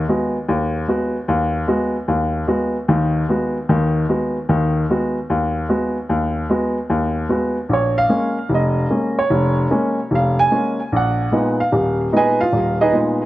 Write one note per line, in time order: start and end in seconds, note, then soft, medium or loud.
0.09 0.36 G#3 medium
0.09 0.36 B3 soft
0.09 0.36 F#4 medium
0.49 0.83 D#2 medium
0.88 1.16 G#3 soft
0.88 1.16 B3 soft
0.88 1.16 F#4 medium
1.28 1.63 D#2 medium
1.68 1.95 G#3 medium
1.68 1.96 B3 soft
1.68 1.96 F#4 medium
2.08 2.43 D#2 medium
2.48 2.75 G#3 medium
2.48 2.76 B3 soft
2.48 2.76 F#4 medium
2.88 3.23 D#2 medium
2.88 3.23 D#3 medium
3.29 3.56 G#3 medium
3.29 3.56 B3 soft
3.29 3.57 F#4 medium
3.69 4.04 D#2 medium
3.69 4.04 D#3 medium
4.09 4.36 G#3 soft
4.09 4.36 B3 soft
4.09 4.36 F#4 medium
4.49 4.83 D#2 medium
4.49 4.84 D#3 medium
4.90 5.17 G#3 medium
4.90 5.17 B3 soft
4.90 5.17 F#4 medium
5.30 5.64 D#2 medium
5.69 5.96 G#3 medium
5.69 5.96 B3 soft
5.69 5.97 F#4 medium
6.10 6.44 D#2 medium
6.50 6.77 G#3 medium
6.50 6.77 B3 soft
6.50 6.77 F#4 medium
6.90 7.24 D#2 medium
7.29 7.57 G#3 soft
7.29 7.57 B3 soft
7.29 7.57 F#4 medium
7.69 8.04 A#1 medium
7.74 7.97 C#5 medium
7.98 8.47 F5 medium
8.09 8.37 G#3 medium
8.09 8.37 A#3 soft
8.09 8.37 C#4 medium
8.50 8.84 F1 medium
8.55 9.14 D#5 medium
8.90 9.17 G#3 soft
8.90 9.17 A#3 soft
8.90 9.18 C#4 medium
9.19 9.55 C#5 medium
9.30 9.65 F1 medium
9.71 9.98 G#3 medium
9.71 9.98 A#3 medium
9.71 9.98 C#4 medium
10.11 10.46 F1 medium
10.15 10.38 F5 medium
10.39 10.89 G#5 loud
10.51 10.78 G#3 soft
10.51 10.79 A#3 soft
10.51 10.79 C#4 medium
10.92 11.27 A#1 medium
10.96 11.56 F#5 medium
11.31 11.59 A#2 medium
11.31 11.59 G#3 medium
11.31 11.59 B3 medium
11.31 11.59 D#4 medium
11.60 11.96 F5 medium
11.72 12.07 D#1 medium
12.12 12.39 A#2 soft
12.12 12.40 G#3 soft
12.12 12.40 B3 soft
12.12 12.40 D#4 medium
12.16 12.40 G#4 medium
12.16 12.40 B4 medium
12.16 12.40 D#5 medium
12.16 12.40 G#5 medium
12.40 12.77 F4 medium
12.40 12.77 F5 medium
12.52 12.87 D#1 medium
12.81 12.91 D#4 medium
12.81 12.94 G#4 medium
12.81 12.94 B4 medium
12.81 12.94 D#5 medium
12.92 13.20 A#2 medium
12.92 13.20 G#3 medium
12.92 13.20 B3 soft
12.92 13.20 D#4 medium